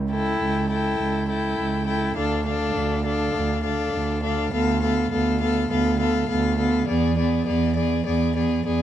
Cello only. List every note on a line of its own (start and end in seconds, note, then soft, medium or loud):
0.00 0.34 C#2 medium
0.41 0.93 C#2 medium
1.00 1.51 C#2 medium
1.59 2.10 C#2 medium
2.17 2.69 D2 medium
2.76 3.28 D2 medium
3.35 3.87 D2 medium
3.94 4.46 D2 medium
4.53 5.05 D2 medium
5.12 5.64 D2 medium
5.71 6.22 D2 medium
6.29 6.81 D2 medium
6.89 7.41 E2 medium
7.48 8.00 E2 medium
8.06 8.59 E2 medium
8.66 8.82 E2 medium